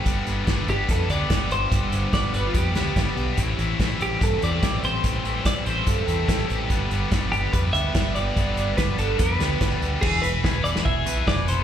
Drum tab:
CC |----------------|----------------|----------------|----------------|
HH |x-x-x-x-x-x-x-x-|x-x-x-x-x-x-x-x-|x-x-x-x-x-x-x-x-|x-x-x-x-x-x-x-x-|
SD |----o-------o---|----o-----o-o---|----o-------o---|----o-------o---|
BD |o---o---o---o---|o---o---o---o---|o---o---o---o---|o---o---o---o---|

CC |----------------|----------------|x---------------|
HH |x-x-x-x-x-x-x-x-|x-x-x-x-x-x-x-x-|--x---x---x---x-|
SD |----o-------o---|----o-----o-o---|----o--o----o---|
BD |o---o---o---o---|o---o---o---o---|o---o---o---o---|